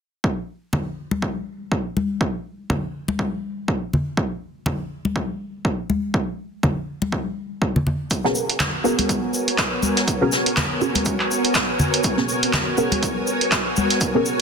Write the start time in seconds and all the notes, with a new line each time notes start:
0.24 kick
0.73 kick, low conga
1.11 high conga
1.22 kick
1.72 kick
1.97 high conga
2.21 kick
2.70 kick, low conga
3.08 high conga
3.19 kick
3.68 kick
3.93 low conga
4.17 kick
4.66 kick, low conga
5.05 high conga
5.16 kick
5.65 kick
5.90 high conga
6.14 kick
6.63 kick, low conga
7.02 high conga
7.12 kick
7.62 kick
7.76 low conga
7.87 low conga
8.11 B3 F#4 A#4 C#5 G#5, kick, closed hi-hat, shaker
8.24 B3 C#4 F#4 G#4 A#4, snare
8.35 shaker
8.49 closed hi-hat
8.60 kick, snare, clap, closed hi-hat, low conga, shaker
8.84 B3 C#4 F#4 G#4 A#4, shaker
8.98 closed hi-hat, high conga
9.09 kick, closed hi-hat, shaker
9.34 shaker
9.48 closed hi-hat
9.58 kick, snare, clap, closed hi-hat, shaker
9.83 high conga, shaker
9.97 snare, closed hi-hat
10.08 kick, closed hi-hat, shaker
10.21 B3 C#4 F#4 G#4 A#4
10.32 snare, shaker
10.46 closed hi-hat
10.56 kick, snare, clap, closed hi-hat, low conga, shaker
10.81 B3 C#4 F#4 G#4 A#4, shaker
10.95 snare, closed hi-hat, high conga
11.05 kick, closed hi-hat, shaker
11.20 clap
11.31 shaker
11.45 closed hi-hat
11.54 kick, snare, clap, closed hi-hat, shaker
11.79 low conga, shaker
11.93 closed hi-hat
12.03 kick, closed hi-hat, shaker
12.18 B3 C#4 F#4 G#4 A#4, snare
12.29 shaker
12.43 closed hi-hat
12.53 kick, snare, clap, closed hi-hat, low conga, shaker
12.77 B3 C#4 F#4 G#4 A#4, shaker
12.92 closed hi-hat, high conga
13.03 kick, closed hi-hat, shaker
13.27 shaker
13.41 closed hi-hat
13.51 kick, snare, clap, closed hi-hat, shaker
13.76 high conga, shaker
13.90 snare, closed hi-hat
14.01 kick, closed hi-hat, shaker
14.15 B3 C#4 F#4 G#4 A#4
14.26 shaker